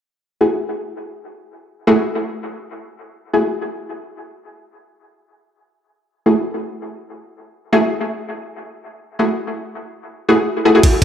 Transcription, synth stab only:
0.41 A3 E4 F#4 G#4
1.87 A3 E4 F#4 G#4
3.33 A3 E4 F#4 G#4
6.26 A3 E4 F#4 G#4
7.72 A3 E4 F#4 G#4
9.19 A3 E4 F#4 G#4
10.29 A3 E4 F#4 G#4
10.65 A3 E4 F#4 G#4
10.75 A3 E4 F#4 G#4

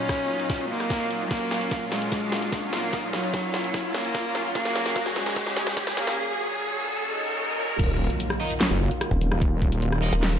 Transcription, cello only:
Already playing: C#4
0.70 A#3
1.31 A#3
1.92 G#3
2.73 A#3
3.13 F#3
3.94 A#3
4.55 A#3
5.16 G#3
5.97 A#3

